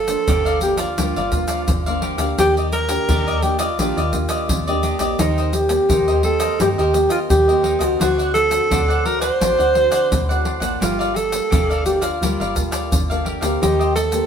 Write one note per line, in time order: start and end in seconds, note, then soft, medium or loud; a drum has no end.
0.00 0.17 G1 loud
0.00 0.24 G2 soft
0.00 0.62 A4 loud
0.08 0.56 F3 medium
0.08 0.56 A#3 soft
0.08 0.56 D4 medium
0.08 pandeiro medium
0.08 shaker medium
0.27 0.87 G1 loud
0.27 0.95 D3 soft
0.27 0.44 G4 soft
0.27 0.44 A#4 soft
0.27 0.44 D5 soft
0.27 0.44 F5 soft
0.27 pandeiro medium
0.27 shaker medium
0.27 surdo medium
0.45 0.78 A#4 medium
0.45 0.77 D5 medium
0.45 0.76 F5 medium
0.45 pandeiro soft
0.45 shaker soft
0.61 0.83 F3 medium
0.61 0.83 A#3 medium
0.61 0.83 D4 soft
0.61 0.79 G4 medium
0.61 pandeiro medium
0.61 shaker medium
0.77 1.99 F4 medium
0.77 0.96 A#4 medium
0.77 0.95 D5 medium
0.77 0.95 F5 medium
0.77 pandeiro medium
0.77 shaker medium
0.98 1.13 D2 medium
0.98 1.65 G2 medium
0.98 1.19 F3 medium
0.98 1.19 A#3 medium
0.98 1.19 D4 medium
0.98 1.14 G4 soft
0.98 1.15 A#4 soft
0.98 1.15 D5 medium
0.98 1.15 F5 medium
0.98 pandeiro medium
0.98 shaker medium
0.98 surdo medium
1.16 1.46 G1 medium
1.16 1.32 A#4 soft
1.16 1.32 D5 medium
1.16 1.32 F5 medium
1.16 pandeiro soft
1.16 shaker soft
1.32 1.66 F3 soft
1.32 1.66 A#3 medium
1.32 1.66 D4 medium
1.32 muted cavaquinho stroke soft
1.32 pandeiro medium
1.32 shaker medium
1.32 surdo medium
1.48 1.84 A#4 soft
1.48 1.84 D5 medium
1.48 1.83 F5 medium
1.48 pandeiro medium
1.48 shaker medium
1.68 2.13 G1 medium
1.68 2.35 D3 medium
1.68 pandeiro medium
1.68 shaker medium
1.68 surdo medium
1.86 2.16 F3 medium
1.86 2.16 A#3 medium
1.86 2.16 D4 medium
1.86 2.01 A#4 medium
1.86 2.02 D5 medium
1.86 2.02 F5 medium
1.86 pandeiro soft
1.86 shaker soft
2.02 2.19 G4 soft
2.02 2.18 A#4 soft
2.02 2.17 D5 medium
2.02 2.17 F5 soft
2.02 pandeiro medium
2.18 2.34 D2 medium
2.18 2.85 A#3 medium
2.18 2.85 D4 medium
2.18 2.85 G4 medium
2.18 2.36 A#4 medium
2.18 2.36 D5 medium
2.18 2.36 F5 medium
2.18 pandeiro medium
2.18 shaker medium
2.38 2.98 D#2 loud
2.38 3.05 D#3 medium
2.38 2.55 D4 soft
2.38 2.55 G4 soft
2.38 2.55 G4 medium
2.38 2.55 D5 soft
2.38 2.55 D#5 soft
2.38 pandeiro medium
2.38 shaker medium
2.38 surdo medium
2.57 2.72 G4 soft
2.57 2.72 D5 medium
2.57 2.72 D#5 medium
2.57 pandeiro soft
2.57 shaker soft
2.72 3.44 A#4 medium
2.72 muted cavaquinho stroke soft
2.72 pandeiro medium
2.72 shaker medium
2.88 3.37 A#3 soft
2.88 3.37 D4 medium
2.88 3.37 G4 medium
2.88 pandeiro medium
2.88 shaker medium
3.08 3.69 D#2 loud
3.08 3.75 A#2 medium
3.08 3.25 D4 soft
3.08 3.25 G4 medium
3.08 3.26 D5 medium
3.08 3.26 D#5 medium
3.08 pandeiro medium
3.08 shaker medium
3.08 surdo medium
3.27 3.59 G4 soft
3.27 3.57 D5 medium
3.27 3.58 D#5 medium
3.27 pandeiro soft
3.27 shaker soft
3.42 3.64 A#3 soft
3.42 3.64 D4 soft
3.42 3.59 G4 medium
3.42 3.64 G4 medium
3.42 pandeiro medium
3.42 shaker medium
3.59 4.79 F4 medium
3.59 3.77 G4 medium
3.59 3.76 D5 medium
3.59 3.77 D#5 medium
3.59 pandeiro medium
3.59 shaker medium
3.79 3.94 A#1 medium
3.79 4.46 D#3 soft
3.79 4.00 A#3 medium
3.79 3.95 D4 soft
3.79 4.00 D4 medium
3.79 3.96 G4 soft
3.79 4.00 G4 medium
3.79 3.96 D5 soft
3.79 3.96 D#5 medium
3.79 pandeiro medium
3.79 shaker medium
3.79 surdo medium
3.97 4.27 D#2 medium
3.97 4.12 G4 medium
3.97 4.12 D5 medium
3.97 4.12 D#5 medium
3.97 pandeiro soft
3.97 shaker soft
4.12 4.60 A#3 medium
4.12 4.61 D4 medium
4.12 4.61 G4 medium
4.12 muted cavaquinho stroke soft
4.12 pandeiro medium
4.12 shaker medium
4.12 surdo medium
4.29 4.65 G4 medium
4.29 4.64 D5 medium
4.29 4.65 D#5 medium
4.29 pandeiro medium
4.29 shaker medium
4.49 4.94 D#2 medium
4.49 5.16 A#2 medium
4.49 pandeiro medium
4.49 shaker medium
4.49 surdo medium
4.67 4.97 A#3 medium
4.67 4.97 D4 medium
4.67 4.97 G4 medium
4.67 4.82 G4 medium
4.67 4.83 D5 medium
4.67 4.82 D#5 medium
4.67 pandeiro soft
4.67 shaker soft
4.83 5.00 D4 soft
4.83 5.00 G4 soft
4.83 4.98 D5 medium
4.83 4.99 D#5 medium
4.83 pandeiro medium
4.83 shaker medium
4.99 5.16 A#1 medium
4.99 5.65 A#3 medium
4.99 5.66 C4 medium
4.99 5.66 G4 medium
4.99 5.18 G4 medium
4.99 5.17 D5 medium
4.99 5.17 D#5 medium
4.99 pandeiro medium
4.99 shaker medium
5.19 5.79 D#2 loud
5.19 5.86 D#3 soft
5.19 5.55 D#4 medium
5.19 5.36 D#4 soft
5.19 5.36 A#4 soft
5.19 5.36 C5 soft
5.19 5.37 D#5 soft
5.19 pandeiro medium
5.19 shaker medium
5.19 surdo medium
5.38 5.53 A#4 soft
5.38 5.53 C5 medium
5.38 5.53 D#5 medium
5.38 pandeiro soft
5.38 shaker soft
5.53 6.24 G4 medium
5.53 muted cavaquinho stroke soft
5.53 pandeiro medium
5.53 shaker medium
5.69 6.18 A#3 medium
5.69 6.18 C4 medium
5.69 6.19 G4 medium
5.69 pandeiro medium
5.69 shaker medium
5.89 6.49 D#2 loud
5.89 6.57 D#3 soft
5.89 6.06 D#4 soft
5.89 6.06 A#4 medium
5.89 6.06 C5 medium
5.89 6.06 D#5 medium
5.89 pandeiro medium
5.89 shaker medium
5.89 surdo medium
6.08 6.40 A#4 medium
6.08 6.39 C5 medium
6.08 6.39 D#5 medium
6.08 pandeiro soft
6.08 shaker soft
6.23 6.54 A#3 medium
6.23 6.54 C4 soft
6.23 6.54 G4 medium
6.23 6.57 A4 medium
6.23 pandeiro medium
6.40 6.58 A#4 medium
6.40 6.58 C5 medium
6.40 6.57 D#5 medium
6.40 pandeiro medium
6.40 shaker medium
6.59 6.75 G2 loud
6.59 7.27 D#3 medium
6.59 6.81 A#3 medium
6.59 6.81 C4 medium
6.59 6.76 D#4 soft
6.59 6.81 G4 medium
6.59 6.69 G4 medium
6.59 6.76 A#4 soft
6.59 6.77 C5 soft
6.59 6.77 D#5 medium
6.59 pandeiro medium
6.59 shaker medium
6.59 surdo medium
6.78 7.08 D#2 medium
6.78 7.10 G4 medium
6.78 6.92 A#4 medium
6.78 6.93 C5 medium
6.78 6.93 D#5 medium
6.78 pandeiro soft
6.78 shaker soft
6.93 7.42 A#3 medium
6.93 7.42 C4 soft
6.93 7.42 G4 medium
6.93 muted cavaquinho stroke soft
6.93 pandeiro medium
6.93 shaker medium
7.09 7.19 F4 medium
7.09 7.46 A#4 soft
7.09 7.45 C5 medium
7.09 7.45 D#5 medium
7.09 pandeiro medium
7.09 shaker medium
7.30 7.75 D#2 medium
7.30 7.97 D#3 medium
7.30 7.79 G4 medium
7.30 pandeiro medium
7.30 shaker medium
7.30 surdo medium
7.48 7.78 A#3 medium
7.48 7.78 C4 medium
7.48 7.79 G4 medium
7.48 7.63 A#4 medium
7.48 7.63 C5 soft
7.48 7.63 D#5 medium
7.48 pandeiro soft
7.48 shaker soft
7.63 7.81 D#4 soft
7.63 7.79 A#4 soft
7.63 7.79 C5 soft
7.63 7.78 D#5 soft
7.63 pandeiro medium
7.79 7.96 C#2 medium
7.79 8.46 C4 medium
7.79 8.47 F#4 medium
7.79 8.47 A4 medium
7.79 7.98 A#4 medium
7.79 7.98 C5 medium
7.79 7.97 D#5 medium
7.79 pandeiro medium
7.79 shaker medium
7.99 8.60 D2 loud
7.99 8.67 D3 medium
7.99 8.16 D4 soft
7.99 8.33 F#4 medium
7.99 8.16 C5 soft
7.99 8.17 D5 medium
7.99 8.17 F#5 medium
7.99 pandeiro medium
7.99 shaker medium
7.99 surdo medium
8.18 8.33 C5 soft
8.18 8.33 D5 medium
8.18 8.33 F#5 medium
8.18 pandeiro soft
8.18 shaker soft
8.34 9.07 A4 loud
8.34 muted cavaquinho stroke soft
8.34 pandeiro medium
8.34 shaker medium
8.50 8.99 C4 medium
8.50 8.99 F#4 medium
8.50 8.99 A4 medium
8.50 pandeiro medium
8.50 shaker medium
8.71 9.31 D2 loud
8.71 9.38 A2 soft
8.71 8.87 D4 medium
8.71 8.87 C5 medium
8.71 8.88 D5 medium
8.71 8.87 F#5 medium
8.71 pandeiro medium
8.71 shaker medium
8.71 surdo medium
8.88 9.21 C5 medium
8.88 9.20 D5 medium
8.88 9.19 F#5 medium
8.88 pandeiro soft
8.88 shaker soft
9.05 9.26 C4 medium
9.05 9.26 F#4 medium
9.05 9.26 A4 medium
9.05 9.21 A#4 medium
9.05 pandeiro medium
9.20 9.39 C5 medium
9.20 10.42 C5 loud
9.20 9.38 D5 medium
9.20 9.38 F#5 medium
9.20 pandeiro medium
9.20 shaker medium
9.40 9.56 A1 loud
9.40 10.08 D3 medium
9.40 9.62 C4 medium
9.40 9.57 D4 soft
9.40 9.62 F#4 medium
9.40 9.62 A4 medium
9.40 9.57 C5 soft
9.40 9.58 D5 medium
9.40 9.57 F#5 soft
9.40 pandeiro medium
9.40 shaker medium
9.40 surdo medium
9.58 9.89 D2 medium
9.58 9.73 C5 medium
9.58 9.74 D5 medium
9.58 9.74 F#5 medium
9.58 pandeiro soft
9.58 shaker soft
9.74 10.09 C4 soft
9.74 10.09 F#4 medium
9.74 10.09 A4 medium
9.74 muted cavaquinho stroke soft
9.74 pandeiro soft
9.91 10.27 C5 soft
9.91 10.26 D5 medium
9.91 10.26 F#5 medium
9.91 pandeiro medium
9.91 shaker medium
10.11 10.56 D2 medium
10.11 10.78 A2 medium
10.11 pandeiro medium
10.11 shaker medium
10.11 surdo medium
10.29 10.59 C4 medium
10.29 10.59 F#4 medium
10.29 10.59 A4 medium
10.29 10.44 C5 soft
10.29 10.44 D5 medium
10.29 10.45 F#5 medium
10.29 pandeiro soft
10.29 shaker soft
10.44 10.62 D4 soft
10.44 10.61 C5 soft
10.44 10.60 D5 medium
10.44 10.59 F#5 soft
10.44 pandeiro medium
10.60 10.77 A1 medium
10.60 11.27 A#3 medium
10.60 11.28 F4 medium
10.60 11.28 A4 medium
10.60 10.79 C5 soft
10.60 10.79 D5 medium
10.60 10.78 F#5 medium
10.60 pandeiro medium
10.60 shaker medium
10.80 11.41 G1 loud
10.80 11.49 G3 soft
10.80 11.17 F4 medium
10.80 10.97 G4 soft
10.80 10.97 A#4 soft
10.80 10.98 D5 soft
10.80 10.98 F5 soft
10.80 pandeiro medium
10.80 shaker medium
10.80 surdo medium
10.99 11.13 A#4 medium
10.99 11.14 D5 medium
10.99 11.14 F5 medium
10.99 pandeiro soft
10.99 shaker soft
11.14 11.86 A4 loud
11.14 muted cavaquinho stroke soft
11.14 pandeiro medium
11.14 shaker medium
11.31 11.80 A#3 medium
11.31 11.80 F4 soft
11.31 11.80 A4 medium
11.31 pandeiro medium
11.31 shaker medium
11.50 12.11 G1 loud
11.50 12.18 D3 medium
11.50 11.67 G4 soft
11.50 11.68 A#4 soft
11.50 11.68 D5 medium
11.50 11.68 F5 medium
11.50 pandeiro medium
11.50 shaker medium
11.50 surdo loud
11.70 12.02 A#4 soft
11.70 12.01 D5 medium
11.70 12.00 F5 medium
11.70 pandeiro soft
11.70 shaker soft
11.85 12.07 A#3 soft
11.85 12.07 F4 soft
11.85 12.04 G4 medium
11.85 12.07 A4 medium
11.85 pandeiro medium
11.85 shaker medium
12.01 13.26 F4 medium
12.01 12.20 A#4 medium
12.01 12.19 D5 medium
12.01 12.19 F5 medium
12.01 pandeiro medium
12.01 shaker medium
12.21 12.37 D2 medium
12.21 12.89 G3 medium
12.21 12.43 A#3 medium
12.21 12.43 F4 medium
12.21 12.38 G4 soft
12.21 12.43 A4 medium
12.21 12.39 A#4 medium
12.21 12.39 D5 medium
12.21 12.39 F5 medium
12.21 pandeiro medium
12.21 shaker medium
12.21 surdo medium
12.40 12.70 G1 medium
12.40 12.55 A#4 medium
12.40 12.55 D5 medium
12.40 12.56 F5 medium
12.40 pandeiro soft
12.40 shaker soft
12.55 13.03 A#3 medium
12.55 13.04 F4 soft
12.55 13.04 A4 medium
12.55 muted cavaquinho stroke soft
12.55 pandeiro medium
12.55 shaker medium
12.55 surdo medium
12.71 13.08 A#4 medium
12.71 13.07 D5 medium
12.71 13.07 F5 medium
12.71 pandeiro medium
12.71 shaker medium
12.92 13.37 G1 loud
12.92 13.59 D3 medium
12.92 pandeiro medium
12.92 shaker medium
12.92 surdo medium
13.10 13.40 A#3 medium
13.10 13.40 F4 medium
13.10 13.40 A4 medium
13.10 13.24 A#4 soft
13.10 13.25 D5 medium
13.10 13.26 F5 medium
13.10 pandeiro soft
13.10 shaker soft
13.25 13.42 G4 soft
13.25 13.41 A#4 medium
13.25 13.40 D5 soft
13.25 13.40 F5 medium
13.25 pandeiro medium
13.41 13.58 D2 medium
13.41 14.08 A#3 medium
13.41 14.08 C4 medium
13.41 14.09 G4 medium
13.41 13.60 A#4 medium
13.41 13.59 D5 medium
13.41 13.59 F5 medium
13.41 pandeiro medium
13.41 shaker medium
13.61 14.22 D#2 loud
13.61 14.27 D#3 soft
13.61 13.78 D#4 soft
13.61 13.78 G4 soft
13.61 13.95 G4 medium
13.61 13.79 C5 soft
13.61 13.78 D#5 soft
13.61 pandeiro medium
13.61 shaker medium
13.61 surdo medium
13.79 13.94 G4 soft
13.79 13.95 C5 medium
13.79 13.95 D#5 medium
13.79 pandeiro soft
13.79 shaker soft
13.95 14.27 A4 medium
13.95 muted cavaquinho stroke soft
13.95 pandeiro medium
13.95 shaker medium
14.12 14.27 A#3 medium
14.12 14.27 C4 medium
14.12 14.27 G4 medium
14.12 pandeiro medium
14.12 shaker medium